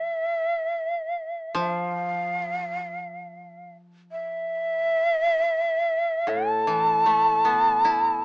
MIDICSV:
0, 0, Header, 1, 3, 480
1, 0, Start_track
1, 0, Tempo, 500000
1, 7918, End_track
2, 0, Start_track
2, 0, Title_t, "Shakuhachi"
2, 0, Program_c, 0, 77
2, 0, Note_on_c, 0, 76, 68
2, 1506, Note_off_c, 0, 76, 0
2, 1524, Note_on_c, 0, 76, 71
2, 1639, Note_off_c, 0, 76, 0
2, 1639, Note_on_c, 0, 77, 71
2, 3591, Note_off_c, 0, 77, 0
2, 3953, Note_on_c, 0, 76, 89
2, 6039, Note_on_c, 0, 81, 89
2, 6053, Note_off_c, 0, 76, 0
2, 7918, Note_off_c, 0, 81, 0
2, 7918, End_track
3, 0, Start_track
3, 0, Title_t, "Koto"
3, 0, Program_c, 1, 107
3, 0, Note_on_c, 1, 62, 29
3, 0, Note_on_c, 1, 65, 27
3, 0, Note_on_c, 1, 69, 31
3, 221, Note_off_c, 1, 62, 0
3, 582, Note_off_c, 1, 65, 0
3, 947, Note_off_c, 1, 69, 0
3, 1484, Note_on_c, 1, 53, 53
3, 4728, Note_off_c, 1, 53, 0
3, 6019, Note_on_c, 1, 45, 42
3, 6405, Note_on_c, 1, 52, 33
3, 6777, Note_on_c, 1, 57, 34
3, 7150, Note_on_c, 1, 59, 37
3, 7532, Note_on_c, 1, 64, 34
3, 7918, Note_off_c, 1, 45, 0
3, 7918, Note_off_c, 1, 52, 0
3, 7918, Note_off_c, 1, 57, 0
3, 7918, Note_off_c, 1, 59, 0
3, 7918, Note_off_c, 1, 64, 0
3, 7918, End_track
0, 0, End_of_file